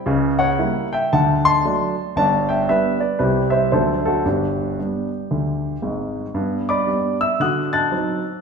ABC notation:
X:1
M:4/4
L:1/8
Q:"Swing" 1/4=114
K:G
V:1 name="Grand piano"
z [^cf]2 [eg] [fa] [a=c']3 | [da] [eg] [Be] [Bd] [GB] [ce] [Ac] [FA] | [DG]6- [DG] z | z [dbd']2 [ee'] [f_e'f'] [af'a']3 |]
V:2 name="Grand piano" clef=bass
[^C,,^C,]2 [G,^A,E]2 [D,,D,]2 [F,=A,D]2 | [G,,,G,,]2 [G,B,D]2 [C,,C,G,CE]2 [D,,D,F,A,D]2 | [G,,,G,,]2 [G,B,D]2 [D,,D,]2 [_A,,,_A,,]2 | [G,,B,]2 [G,B,D]2 [D,F]2 [F,C_E]2 |]